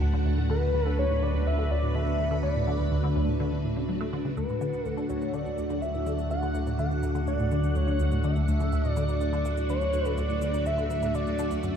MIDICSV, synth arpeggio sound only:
0, 0, Header, 1, 2, 480
1, 0, Start_track
1, 0, Key_signature, 2, "major"
1, 0, Tempo, 483871
1, 495, Time_signature, 4, 2, 24, 8
1, 11671, End_track
2, 0, Start_track
2, 0, Title_t, "Synth arpeggio sound"
2, 0, Program_c, 0, 84
2, 14, Note_on_c, 0, 38, 104
2, 70, Note_off_c, 0, 38, 0
2, 133, Note_on_c, 0, 50, 104
2, 190, Note_off_c, 0, 50, 0
2, 253, Note_on_c, 0, 38, 102
2, 310, Note_off_c, 0, 38, 0
2, 372, Note_on_c, 0, 45, 77
2, 429, Note_off_c, 0, 45, 0
2, 494, Note_on_c, 0, 50, 105
2, 578, Note_off_c, 0, 50, 0
2, 612, Note_on_c, 0, 38, 75
2, 669, Note_off_c, 0, 38, 0
2, 735, Note_on_c, 0, 38, 102
2, 790, Note_off_c, 0, 38, 0
2, 854, Note_on_c, 0, 50, 104
2, 910, Note_off_c, 0, 50, 0
2, 974, Note_on_c, 0, 38, 103
2, 1030, Note_off_c, 0, 38, 0
2, 1092, Note_on_c, 0, 45, 80
2, 1149, Note_off_c, 0, 45, 0
2, 1213, Note_on_c, 0, 50, 102
2, 1297, Note_off_c, 0, 50, 0
2, 1333, Note_on_c, 0, 38, 81
2, 1390, Note_off_c, 0, 38, 0
2, 1452, Note_on_c, 0, 38, 104
2, 1509, Note_off_c, 0, 38, 0
2, 1573, Note_on_c, 0, 50, 104
2, 1629, Note_off_c, 0, 50, 0
2, 1692, Note_on_c, 0, 38, 102
2, 1749, Note_off_c, 0, 38, 0
2, 1813, Note_on_c, 0, 45, 77
2, 1869, Note_off_c, 0, 45, 0
2, 1932, Note_on_c, 0, 50, 106
2, 2017, Note_off_c, 0, 50, 0
2, 2053, Note_on_c, 0, 38, 76
2, 2109, Note_off_c, 0, 38, 0
2, 2171, Note_on_c, 0, 38, 102
2, 2229, Note_off_c, 0, 38, 0
2, 2290, Note_on_c, 0, 50, 108
2, 2348, Note_off_c, 0, 50, 0
2, 2411, Note_on_c, 0, 38, 106
2, 2469, Note_off_c, 0, 38, 0
2, 2533, Note_on_c, 0, 45, 75
2, 2589, Note_off_c, 0, 45, 0
2, 2652, Note_on_c, 0, 50, 100
2, 2737, Note_off_c, 0, 50, 0
2, 2773, Note_on_c, 0, 38, 79
2, 2830, Note_off_c, 0, 38, 0
2, 2893, Note_on_c, 0, 38, 100
2, 2949, Note_off_c, 0, 38, 0
2, 3012, Note_on_c, 0, 50, 107
2, 3069, Note_off_c, 0, 50, 0
2, 3132, Note_on_c, 0, 38, 104
2, 3189, Note_off_c, 0, 38, 0
2, 3253, Note_on_c, 0, 45, 78
2, 3309, Note_off_c, 0, 45, 0
2, 3374, Note_on_c, 0, 50, 100
2, 3458, Note_off_c, 0, 50, 0
2, 3494, Note_on_c, 0, 38, 80
2, 3550, Note_off_c, 0, 38, 0
2, 3615, Note_on_c, 0, 45, 78
2, 3670, Note_off_c, 0, 45, 0
2, 3735, Note_on_c, 0, 49, 79
2, 3791, Note_off_c, 0, 49, 0
2, 3856, Note_on_c, 0, 54, 83
2, 3939, Note_off_c, 0, 54, 0
2, 3974, Note_on_c, 0, 57, 104
2, 4030, Note_off_c, 0, 57, 0
2, 4095, Note_on_c, 0, 50, 103
2, 4151, Note_off_c, 0, 50, 0
2, 4216, Note_on_c, 0, 49, 80
2, 4299, Note_off_c, 0, 49, 0
2, 4335, Note_on_c, 0, 38, 97
2, 4391, Note_off_c, 0, 38, 0
2, 4456, Note_on_c, 0, 45, 72
2, 4511, Note_off_c, 0, 45, 0
2, 4575, Note_on_c, 0, 50, 96
2, 4659, Note_off_c, 0, 50, 0
2, 4697, Note_on_c, 0, 38, 74
2, 4751, Note_off_c, 0, 38, 0
2, 4815, Note_on_c, 0, 38, 98
2, 4870, Note_off_c, 0, 38, 0
2, 4934, Note_on_c, 0, 50, 99
2, 4990, Note_off_c, 0, 50, 0
2, 5054, Note_on_c, 0, 38, 95
2, 5110, Note_off_c, 0, 38, 0
2, 5177, Note_on_c, 0, 45, 75
2, 5231, Note_off_c, 0, 45, 0
2, 5294, Note_on_c, 0, 50, 96
2, 5378, Note_off_c, 0, 50, 0
2, 5415, Note_on_c, 0, 38, 75
2, 5471, Note_off_c, 0, 38, 0
2, 5535, Note_on_c, 0, 38, 99
2, 5591, Note_off_c, 0, 38, 0
2, 5657, Note_on_c, 0, 50, 100
2, 5712, Note_off_c, 0, 50, 0
2, 5778, Note_on_c, 0, 38, 98
2, 5832, Note_off_c, 0, 38, 0
2, 5896, Note_on_c, 0, 45, 74
2, 5951, Note_off_c, 0, 45, 0
2, 6015, Note_on_c, 0, 50, 96
2, 6099, Note_off_c, 0, 50, 0
2, 6136, Note_on_c, 0, 38, 75
2, 6191, Note_off_c, 0, 38, 0
2, 6254, Note_on_c, 0, 38, 96
2, 6310, Note_off_c, 0, 38, 0
2, 6375, Note_on_c, 0, 50, 98
2, 6430, Note_off_c, 0, 50, 0
2, 6494, Note_on_c, 0, 38, 97
2, 6550, Note_off_c, 0, 38, 0
2, 6615, Note_on_c, 0, 45, 73
2, 6671, Note_off_c, 0, 45, 0
2, 6735, Note_on_c, 0, 50, 98
2, 6818, Note_off_c, 0, 50, 0
2, 6855, Note_on_c, 0, 38, 73
2, 6911, Note_off_c, 0, 38, 0
2, 6974, Note_on_c, 0, 38, 97
2, 7030, Note_off_c, 0, 38, 0
2, 7095, Note_on_c, 0, 50, 100
2, 7150, Note_off_c, 0, 50, 0
2, 7213, Note_on_c, 0, 38, 94
2, 7270, Note_off_c, 0, 38, 0
2, 7334, Note_on_c, 0, 45, 75
2, 7390, Note_off_c, 0, 45, 0
2, 7456, Note_on_c, 0, 50, 99
2, 7539, Note_off_c, 0, 50, 0
2, 7574, Note_on_c, 0, 38, 73
2, 7630, Note_off_c, 0, 38, 0
2, 7693, Note_on_c, 0, 38, 99
2, 7750, Note_off_c, 0, 38, 0
2, 7812, Note_on_c, 0, 50, 100
2, 7869, Note_off_c, 0, 50, 0
2, 7934, Note_on_c, 0, 38, 97
2, 7990, Note_off_c, 0, 38, 0
2, 8056, Note_on_c, 0, 45, 75
2, 8111, Note_off_c, 0, 45, 0
2, 8176, Note_on_c, 0, 50, 99
2, 8259, Note_off_c, 0, 50, 0
2, 8297, Note_on_c, 0, 38, 72
2, 8352, Note_off_c, 0, 38, 0
2, 8415, Note_on_c, 0, 38, 99
2, 8471, Note_off_c, 0, 38, 0
2, 8536, Note_on_c, 0, 50, 97
2, 8591, Note_off_c, 0, 50, 0
2, 8656, Note_on_c, 0, 38, 101
2, 8711, Note_off_c, 0, 38, 0
2, 8776, Note_on_c, 0, 45, 77
2, 8831, Note_off_c, 0, 45, 0
2, 8897, Note_on_c, 0, 50, 100
2, 8979, Note_off_c, 0, 50, 0
2, 9016, Note_on_c, 0, 38, 73
2, 9071, Note_off_c, 0, 38, 0
2, 9134, Note_on_c, 0, 38, 97
2, 9190, Note_off_c, 0, 38, 0
2, 9252, Note_on_c, 0, 50, 102
2, 9309, Note_off_c, 0, 50, 0
2, 9374, Note_on_c, 0, 38, 99
2, 9430, Note_off_c, 0, 38, 0
2, 9495, Note_on_c, 0, 45, 73
2, 9550, Note_off_c, 0, 45, 0
2, 9615, Note_on_c, 0, 50, 97
2, 9698, Note_off_c, 0, 50, 0
2, 9734, Note_on_c, 0, 38, 75
2, 9790, Note_off_c, 0, 38, 0
2, 9854, Note_on_c, 0, 38, 99
2, 9910, Note_off_c, 0, 38, 0
2, 9974, Note_on_c, 0, 50, 100
2, 10030, Note_off_c, 0, 50, 0
2, 10096, Note_on_c, 0, 38, 100
2, 10151, Note_off_c, 0, 38, 0
2, 10215, Note_on_c, 0, 45, 69
2, 10271, Note_off_c, 0, 45, 0
2, 10334, Note_on_c, 0, 50, 99
2, 10418, Note_off_c, 0, 50, 0
2, 10454, Note_on_c, 0, 38, 76
2, 10510, Note_off_c, 0, 38, 0
2, 10574, Note_on_c, 0, 38, 97
2, 10630, Note_off_c, 0, 38, 0
2, 10694, Note_on_c, 0, 50, 100
2, 10750, Note_off_c, 0, 50, 0
2, 10816, Note_on_c, 0, 38, 98
2, 10871, Note_off_c, 0, 38, 0
2, 10937, Note_on_c, 0, 45, 77
2, 10992, Note_off_c, 0, 45, 0
2, 11056, Note_on_c, 0, 50, 97
2, 11139, Note_off_c, 0, 50, 0
2, 11178, Note_on_c, 0, 38, 77
2, 11232, Note_off_c, 0, 38, 0
2, 11298, Note_on_c, 0, 50, 100
2, 11330, Note_off_c, 0, 50, 0
2, 11419, Note_on_c, 0, 38, 73
2, 11450, Note_off_c, 0, 38, 0
2, 11538, Note_on_c, 0, 42, 101
2, 11620, Note_off_c, 0, 42, 0
2, 11671, End_track
0, 0, End_of_file